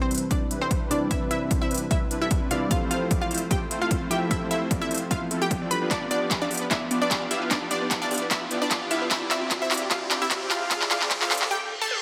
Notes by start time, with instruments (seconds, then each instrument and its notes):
Already playing: felt piano C3 C4 D4 E4 B4, analog synth pad E3 C4 D4 B4, riser
0.02 synth pluck C4 C5
0.11 analog polysynth G3 C4 D4 E4 B4, closed hi-hat
0.15 closed hi-hat
0.18 closed hi-hat
0.31 analog polysynth G3 C4 D4 E4 B4, synth pluck D4 D5, kick, closed hi-hat
0.51 analog polysynth G3 C4 D4 E4 B4, closed hi-hat
0.61 analog polysynth G3 C4 D4 E4 A4, synth pluck C4 C5
0.71 analog polysynth G3 C4 D4 E4 B4, kick, closed hi-hat
0.90 felt piano C3 C4 D4 E4 B4, analog polysynth G3 C4 D4 E4 D5, synth pluck D4 D5, closed hi-hat
1.09 felt piano C3 C4 D4 E4, analog polysynth G3 C4 D4 E4 B4, synth pluck E4 E5, kick, closed hi-hat
1.13 felt piano B4
1.31 analog polysynth G3 C4 D4 E4 B4, synth pluck E4 E5, closed hi-hat
1.42 analog polysynth G3 C4 D4 E4 B4
1.51 analog polysynth G3 C4 D4 E4 C5, kick, closed hi-hat
1.62 synth pluck E4 E5
1.71 analog polysynth G3 C4 D4 E4 B4, closed hi-hat
1.74 closed hi-hat
1.78 closed hi-hat
1.91 analog polysynth G3 C4 D4 E4 B4, synth pluck E4 E5, kick, closed hi-hat
2.11 analog polysynth G3 C4 D4 E4 B4, closed hi-hat
2.22 analog polysynth G3 C4 D4 E4 A4, synth pluck E4 E5
2.31 analog polysynth G3 C4 D4 E4 B4, kick, closed hi-hat
2.50 felt piano C3 C4 D4 E4 B4, analog polysynth G3 C4 D4 E4 D5, synth pluck F4 F5, closed hi-hat
2.69 felt piano F3 C4 E4 G4, analog synth pad F3 E4 A4, analog polysynth A3 C4 E4 F4 C5, synth pluck F4 F5, kick, closed hi-hat
2.73 felt piano A4
2.91 analog polysynth A3 C4 E4 F4 C5, synth pluck F4 F5, closed hi-hat
3.02 analog polysynth A3 C4 E4 F4 C5
3.11 analog polysynth A3 C4 E4 F4 D5, kick, closed hi-hat
3.21 synth pluck F4 F5
3.31 analog polysynth A3 C4 E4 F4 C5, closed hi-hat
3.34 closed hi-hat
3.38 closed hi-hat
3.51 analog polysynth A3 C4 E4 F4 C5, synth pluck G4 G5, kick, closed hi-hat
3.71 analog polysynth A3 C4 E4 F4 C5, closed hi-hat
3.81 analog polysynth A3 C4 E4 F4 A4, synth pluck F4 F5
3.91 analog polysynth A3 C4 E4 F4 C5, kick, closed hi-hat
4.10 felt piano F3 C4 E4 G4 A4, analog polysynth A3 C4 E4 F4 E5, synth pluck G4 G5, closed hi-hat
4.29 felt piano F3 C4, synth pluck E4 E5, kick, closed hi-hat
4.33 felt piano A4
4.51 analog polysynth A3 C4 E4 F4 C5, synth pluck E4 E5, closed hi-hat
4.62 analog polysynth A3 C4 E4 F4 C5
4.71 analog polysynth A3 C4 E4 F4 D5, kick, closed hi-hat
4.82 synth pluck E4 E5
4.91 analog polysynth A3 C4 E4 F4 C5, closed hi-hat
4.94 closed hi-hat
4.98 closed hi-hat
5.11 analog polysynth A3 C4 E4 F4 C5, synth pluck F4 F5, kick, closed hi-hat
5.31 analog polysynth A3 C4 E4 F4 A4, closed hi-hat
5.42 synth pluck G4 G5
5.51 kick, closed hi-hat
5.62 analog polysynth A3 C4 E4 F4 D5
5.70 felt piano G3 D4 F4 A4 B4, analog synth pad B3 G4, synth pluck B4 B5, closed hi-hat
5.82 analog polysynth B3 D4 F4 G4 B4
5.91 analog polysynth B3 D4 F4 G4 D5, synth arpeggio sound B3, synth pluck D4 D5, kick, clap, closed hi-hat
6.02 synth arpeggio sound F4
6.11 synth arpeggio sound B3, analog polysynth B3 D4 F4 G4 D5, synth pluck D4 D5, closed hi-hat
6.22 analog polysynth B3 D4 F4 G4 D5, synth arpeggio sound B3
6.31 analog polysynth B3 D4 F4 G4 E5, synth arpeggio sound G4, kick, clap, closed hi-hat
6.42 synth pluck D4 D5, synth arpeggio sound F5
6.51 analog polysynth B3 D4 F4 G4 D5, synth arpeggio sound G4, closed hi-hat, open hi-hat
6.57 closed hi-hat
6.62 synth arpeggio sound B4
6.71 analog polysynth B3 D4 F4 G4 D5, synth arpeggio sound B3, synth pluck E4 E5, kick, clap, closed hi-hat
6.82 synth arpeggio sound F4
6.91 analog polysynth B3 D4 F4 G4 D5, synth arpeggio sound B3, closed hi-hat
7.02 synth arpeggio sound B3, analog polysynth B3 D4 F4 G4 B4, synth pluck D4 D5
7.11 analog polysynth B3 D4 F4 G4 D5, synth arpeggio sound G4, kick, clap, closed hi-hat
7.22 synth arpeggio sound F5
7.31 analog polysynth B3 D4 F4 G4 F5, synth pluck E4 E5, synth arpeggio sound G4, closed hi-hat
7.42 synth arpeggio sound B4
7.51 analog polysynth B3 D4 G4 D5, synth arpeggio sound B3, synth pluck D4 D5, kick, clap, closed hi-hat
7.62 synth arpeggio sound F4
7.71 analog polysynth B3 D4 F4 G4 D5, synth arpeggio sound B3, synth pluck D4 D5, closed hi-hat
7.82 analog polysynth B3 D4 F4 G4 D5, synth arpeggio sound B3
7.91 analog polysynth B3 D4 G4 E5, synth arpeggio sound G4, kick, clap, closed hi-hat
8.02 synth pluck D4 D5, synth arpeggio sound F5
8.11 analog polysynth B3 D4 F4 G4 D5, synth arpeggio sound G4, closed hi-hat, open hi-hat
8.18 closed hi-hat
8.22 synth arpeggio sound B4
8.31 analog polysynth B3 D4 D5, synth arpeggio sound B3, synth pluck E4 E5, kick, clap, closed hi-hat
8.42 synth arpeggio sound F4
8.51 synth arpeggio sound B3, analog polysynth B3 D4 F4 G4 D5, closed hi-hat
8.62 synth arpeggio sound B3, analog polysynth B3 D4 F4 G4 B4, synth pluck D4 D5
8.71 analog polysynth B3 D4 F4 G4 D5, synth arpeggio sound G4, kick, clap, closed hi-hat
8.82 synth arpeggio sound F5
8.91 analog polysynth B3 D4 F4 G4 F5, synth pluck E4 E5, synth arpeggio sound G4, closed hi-hat
9.02 synth arpeggio sound B4
9.11 synth arpeggio sound C4, analog polysynth C4 E4 F4 G4, analog synth pad C4 D4 E4 G4, synth pluck E4 E5, kick, clap, closed hi-hat
9.22 synth arpeggio sound E4
9.31 analog polysynth C4 E4 F4 G4 D5, synth arpeggio sound C4, synth pluck E4 E5, clap, closed hi-hat
9.41 analog polysynth C4 E4 F4 G4 D5, synth arpeggio sound C4
9.51 analog polysynth C4 E4 F4 G4 E5, synth arpeggio sound F4, kick, clap, closed hi-hat
9.62 synth pluck E4 E5, synth arpeggio sound C5
9.71 analog polysynth C4 E4 F4 G4 D5, synth arpeggio sound F4, clap, closed hi-hat, open hi-hat
9.77 closed hi-hat
9.82 synth arpeggio sound G4
9.91 analog polysynth C4 E4 F4 G4 D5, synth arpeggio sound C4, synth pluck F4 F5, kick, clap, closed hi-hat
10.02 synth arpeggio sound E4
10.11 analog polysynth C4 E4 F4 G4 D5, synth arpeggio sound C4, clap, closed hi-hat
10.22 analog polysynth C4 E4 F4 G4 C5, synth arpeggio sound C4, synth pluck E4 E5
10.31 analog polysynth C4 E4 F4 G4 D5, synth arpeggio sound F4, kick, clap, closed hi-hat
10.42 synth arpeggio sound C5
10.51 analog polysynth C4 E4 F4 G4 F5, synth pluck F4 F5, synth arpeggio sound F4, clap, closed hi-hat
10.62 synth arpeggio sound G4
10.71 analog polysynth C4 E4 F4 D5, synth arpeggio sound C4, synth pluck F4 F5, kick, clap, closed hi-hat
10.82 synth arpeggio sound E4, clap
10.91 analog polysynth C4 E4 F4 G4 D5, synth arpeggio sound C4, synth pluck F4 F5, clap, closed hi-hat
11.02 synth arpeggio sound C4, analog polysynth C4 E4 F4 G4 D5, clap
11.11 analog polysynth C4 E4 G4 E5, synth arpeggio sound F4, kick, clap, closed hi-hat
11.22 synth pluck F4 F5, synth arpeggio sound C5, clap
11.31 analog polysynth C4 E4 F4 G4 D5, synth arpeggio sound F4, clap, closed hi-hat, open hi-hat
11.37 closed hi-hat
11.42 synth arpeggio sound G4, clap
11.51 synth pluck G4 G5, reverse cymbal
11.82 synth pluck A4 A5
11.91 high tom